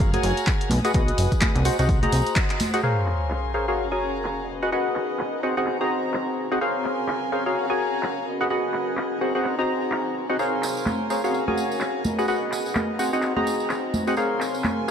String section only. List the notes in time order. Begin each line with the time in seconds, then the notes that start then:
0.00 F#5 F6 G#6 A#6
0.71 B4 G#5 D#6
1.65 C5 F#5 A#5
2.84 A#4 G#5 C6
3.78 F#4 F5 A#5
4.49 B3 G#4 D#5
5.43 C4 F#4 A#5
6.61 A#4 G#5 C6
7.56 F#4 F5 G#5 A#5
8.27 B3 G#4 D#5
9.21 C4 F#4 A#5
10.39 A#4 G#5 C6
11.34 F#4 F5 G#5 A#5
12.05 B3 G#4 D#5
12.99 C4 F#4 A#5
14.17 A#4 G#5 C6